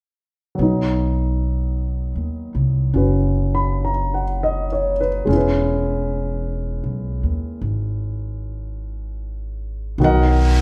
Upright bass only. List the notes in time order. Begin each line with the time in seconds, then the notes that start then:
0.59 B1
2.16 D#2
2.55 C2
2.94 F#1
5.27 E1
6.84 B1
7.23 D#2
7.61 G#1
9.98 B1